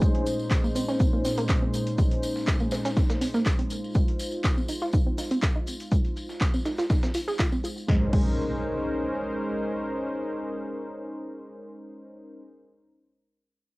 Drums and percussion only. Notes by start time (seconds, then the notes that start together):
0.02 kick, tambourine, shaker
0.15 closed hi-hat
0.26 tambourine, shaker
0.39 tambourine
0.51 kick, snare, clap, tambourine, shaker
0.64 tambourine
0.75 tambourine, shaker
0.88 snare, tambourine
1.00 kick, tambourine, shaker
1.25 snare, tambourine, shaker
1.38 closed hi-hat, tambourine
1.49 kick, snare, clap, tambourine, shaker
1.74 tambourine, shaker
1.87 closed hi-hat, tambourine
1.98 kick, tambourine, shaker
2.11 closed hi-hat
2.23 tambourine, shaker
2.36 snare, tambourine
2.47 kick, snare, clap, tambourine, shaker
2.60 tambourine
2.71 snare, tambourine, shaker
2.85 snare, tambourine, shaker
2.97 kick, snare, tambourine, shaker
3.10 snare, shaker
3.21 open hi-hat, tambourine
3.34 snare, tambourine
3.46 kick, snare, clap, tambourine, shaker
3.59 closed hi-hat
3.70 tambourine, shaker
3.84 tambourine
3.95 kick, tambourine, shaker
4.08 closed hi-hat
4.19 tambourine, shaker
4.32 tambourine
4.44 kick, snare, clap, tambourine, shaker
4.58 tambourine
4.68 tambourine, shaker
4.82 snare, tambourine
4.93 kick, tambourine, shaker
5.18 snare, tambourine, shaker
5.31 closed hi-hat, tambourine
5.42 kick, snare, clap, tambourine, shaker
5.67 tambourine, shaker
5.80 closed hi-hat, tambourine
5.92 kick, tambourine, shaker
6.05 closed hi-hat, tambourine
6.16 tambourine, shaker
6.29 snare, tambourine
6.41 kick, snare, clap, tambourine, shaker
6.54 tambourine
6.65 snare, tambourine, shaker
6.79 snare, tambourine, shaker
6.90 kick, snare, tambourine, shaker
7.03 snare, shaker
7.14 open hi-hat, tambourine
7.28 snare, tambourine
7.39 kick, snare, clap, tambourine, shaker
7.52 tambourine
7.64 tambourine, shaker
7.78 tambourine
7.88 kick, snare
8.13 kick, crash